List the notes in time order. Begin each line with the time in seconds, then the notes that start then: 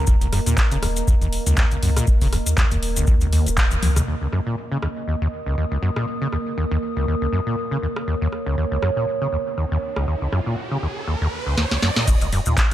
Already playing: A#3 A#4 D#5 A#5
0.07 D#1 D#2, kick, maracas
0.21 C#2, closed hi-hat, maracas
0.33 F#2, cross-stick, open hi-hat
0.46 D#2 A#2, closed hi-hat, maracas
0.58 kick, clap, maracas
0.71 D#1 C#3, closed hi-hat, maracas
0.83 D#2, cross-stick, open hi-hat
0.96 closed hi-hat, maracas
1.08 D#1 D#2, kick, maracas
1.22 D#2, closed hi-hat, maracas
1.33 open hi-hat
1.46 C#2 D#2, closed hi-hat, maracas
1.57 D#2, kick, clap, maracas
1.71 C#2, closed hi-hat, maracas
1.83 C#2 F#2, open hi-hat
1.96 A#2, cross-stick, closed hi-hat, maracas
2.07 D#1, kick, maracas
2.21 C#3, kick, open hi-hat, maracas
2.33 D#2, cross-stick, open hi-hat
2.46 D#2, closed hi-hat, maracas
2.57 D#2, kick, clap, maracas
2.71 D#1 D#2, closed hi-hat, maracas
2.83 open hi-hat
2.96 C#2, closed hi-hat, maracas
3.07 D#2, kick, maracas
3.21 C#2, closed hi-hat, maracas
3.33 D#2, open hi-hat
3.46 D#1, closed hi-hat, maracas
3.57 kick, clap, maracas
3.71 D#2, closed hi-hat, maracas
3.83 C#2 D#2, open hi-hat, high tom
3.96 D#2, cross-stick, closed hi-hat, mid tom, maracas
4.08 D#2 A#3
4.21 C#2 D#5
4.33 F#2, cross-stick
4.46 A#2
4.57 A#4
4.61 D#6
4.72 C#3
4.82 D#2, cross-stick
5.08 D#2
5.21 D#2
5.46 C#2
5.58 D#2
5.71 C#2
5.83 F#2
5.96 A#2, cross-stick
6.21 C#3
6.33 D#2, cross-stick
6.58 D#2
6.71 D#2
6.96 C#2
7.08 D#2
7.21 C#2
7.33 F#2
7.46 A#2
7.71 C#3
7.78 C#5
7.83 D#2
7.96 cross-stick
8.07 D#2, riser
8.21 D#2
8.32 cross-stick
8.46 C#2
8.58 D#2
8.71 C#2
8.82 F#2, cross-stick
8.96 A#2
9.21 C#3
9.33 D#2
9.57 D#2
9.71 D#2
9.96 C#2, cross-stick
10.08 D#2
10.21 C#2
10.32 F#2, cross-stick
10.46 A#2
10.71 C#3
10.83 D#2
11.07 D#2
11.21 D#2
11.46 C#2
11.58 D#2, snare
11.71 C#2, snare
11.82 F#2, snare
11.96 A#2, snare
12.08 D#1 D#2, kick, closed hi-hat, crash, maracas
12.21 C#2, closed hi-hat, maracas
12.33 F#2, open hi-hat
12.46 D#2 A#2, maracas
12.58 kick, clap, closed hi-hat, maracas